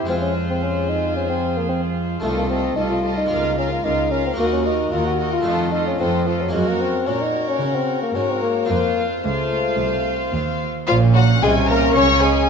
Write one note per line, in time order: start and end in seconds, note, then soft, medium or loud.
0.00 2.24 C5 soft
0.05 2.20 F2 medium
0.05 2.18 G#3 soft
0.05 2.19 C4 soft
0.05 2.19 F4 soft
0.10 2.20 F2 soft
0.10 0.16 C4 medium
0.10 2.20 F4 soft
0.10 2.25 G#4 soft
0.22 0.34 C#4 medium
0.50 0.65 C4 medium
0.63 0.91 C#4 medium
0.89 1.15 D#4 medium
1.16 1.29 C#4 medium
1.29 1.59 C4 medium
1.58 1.69 A#3 medium
1.69 1.82 C4 medium
2.20 3.26 A3 soft
2.20 2.29 A3 medium
2.20 3.27 D#4 soft
2.20 2.50 F4 medium
2.20 3.27 F4 soft
2.20 2.50 A4 medium
2.24 2.71 C2 medium
2.24 2.69 C2 soft
2.24 2.50 D#5 soft
2.37 2.43 A#3 medium
2.50 2.75 C4 medium
2.50 2.76 F4 soft
2.50 2.76 A4 soft
2.50 2.77 D#5 soft
2.76 3.25 C2 soft
2.76 3.22 C2 soft
2.76 2.82 D#4 medium
2.76 3.03 F4 soft
2.76 3.02 A4 soft
2.76 3.04 D#5 soft
2.90 3.17 F4 medium
3.03 3.30 F4 soft
3.03 3.30 A4 soft
3.03 3.31 D#5 soft
3.17 3.57 D#4 medium
3.26 4.33 A#3 soft
3.26 4.34 F4 soft
3.31 3.75 C#2 soft
3.31 3.78 C#2 medium
3.31 3.56 F4 soft
3.31 3.56 A#4 medium
3.31 3.58 F5 soft
3.57 3.71 C#4 medium
3.57 3.83 F4 soft
3.57 3.83 A#4 soft
3.57 3.83 F5 soft
3.72 3.86 F4 medium
3.84 4.31 C#2 medium
3.84 4.29 C#2 soft
3.84 4.13 D#4 medium
3.84 4.09 F4 medium
3.84 4.10 A#4 soft
3.84 4.11 F5 soft
4.11 4.25 C#4 medium
4.11 4.37 F4 soft
4.11 4.37 A#4 soft
4.11 4.38 F5 soft
4.26 4.32 C4 medium
4.34 5.40 A#3 soft
4.34 5.41 D#4 soft
4.34 5.42 F#4 soft
4.38 4.86 D#2 medium
4.38 4.83 D#2 soft
4.38 4.45 A#3 medium
4.38 4.63 F#4 medium
4.38 4.63 A#4 soft
4.38 4.64 D#5 medium
4.53 4.68 C#4 medium
4.64 4.94 D#4 medium
4.64 4.90 F#4 soft
4.64 4.91 A#4 soft
4.64 4.91 D#5 soft
4.91 5.39 D#2 medium
4.91 5.36 D#2 soft
4.91 5.06 F4 medium
4.91 5.18 F#4 medium
4.91 5.17 A#4 soft
4.91 5.18 D#5 soft
5.06 5.32 F#4 medium
5.18 5.45 F#4 medium
5.18 5.45 A#4 soft
5.18 5.45 D#5 soft
5.33 5.71 F4 medium
5.41 6.48 A3 soft
5.41 6.49 C4 soft
5.41 6.49 D#4 soft
5.41 5.71 F4 soft
5.45 5.93 F2 medium
5.45 5.90 F2 soft
5.45 5.70 A4 medium
5.45 5.72 D#5 soft
5.72 5.85 D#4 medium
5.72 5.98 F4 soft
5.72 5.98 A4 soft
5.72 5.99 D#5 soft
5.87 6.00 C#4 medium
5.99 6.44 F2 soft
5.99 6.47 F2 medium
5.99 6.28 C4 medium
5.99 6.23 F4 soft
5.99 6.25 A4 medium
5.99 6.26 D#5 medium
6.25 6.43 F3 medium
6.25 6.52 F4 soft
6.25 6.53 A4 soft
6.25 6.53 D#5 soft
6.41 6.55 F#3 medium
6.49 8.09 A#3 soft
6.49 8.10 C#4 soft
6.53 7.03 F#2 medium
6.53 7.03 F#2 soft
6.53 6.69 G#3 medium
6.53 7.03 F#4 medium
6.53 7.03 A#4 soft
6.53 7.03 C#5 soft
6.68 6.83 A#3 medium
6.81 7.09 C4 medium
7.06 7.57 A#2 soft
7.06 7.57 A#2 medium
7.06 7.23 C#4 medium
7.06 8.13 F#4 medium
7.06 8.13 A#4 medium
7.06 8.13 C#5 medium
7.22 7.48 D#4 medium
7.49 7.77 C#4 medium
7.60 8.11 C#3 medium
7.60 8.11 C#3 soft
7.75 8.02 C4 medium
8.02 8.17 A#3 medium
8.14 8.66 G#2 medium
8.14 8.66 G#2 soft
8.14 8.32 C#4 medium
8.14 8.69 F#4 medium
8.14 8.68 A#4 soft
8.14 8.69 C#5 medium
8.30 8.42 C4 medium
8.42 8.69 A#3 medium
8.65 9.20 C4 soft
8.65 10.82 F4 soft
8.65 9.22 F5 soft
8.69 9.20 F2 soft
8.69 9.21 F2 medium
8.69 9.05 A#3 medium
8.69 9.24 F4 medium
8.69 9.22 C5 soft
9.23 9.75 C#2 medium
9.23 9.75 C#2 soft
9.23 10.30 A3 medium
9.23 10.65 F4 medium
9.23 10.64 C5 medium
9.23 10.65 F5 medium
9.78 10.29 C2 soft
9.78 10.29 C2 medium
10.33 10.84 D#2 medium
10.33 10.84 D#2 soft
10.88 11.38 A#1 medium
10.88 11.38 A#2 medium
10.88 11.00 F3 medium
10.88 12.49 C#4 medium
10.88 10.96 F4 medium
10.88 10.96 F5 loud
11.15 11.27 F#3 medium
11.15 11.23 F#4 medium
11.15 11.41 F#5 medium
11.41 11.96 C2 medium
11.41 11.96 C3 medium
11.41 11.92 C3 medium
11.41 11.56 G#3 medium
11.41 11.82 C#4 soft
11.41 11.81 F4 medium
11.41 11.50 G#4 medium
11.41 11.69 G#5 loud
11.68 11.96 A#3 medium
11.68 11.95 A#4 medium
11.68 11.96 A#5 medium
11.95 12.49 C#2 medium
11.95 12.49 C#3 medium
11.95 12.46 C#3 medium
11.95 12.49 A#3 medium
11.95 12.09 C#4 medium
11.95 12.22 C#5 loud
11.95 12.22 C#6 medium
12.22 12.49 G#3 medium
12.22 12.49 G#4 medium
12.22 12.49 G#5 medium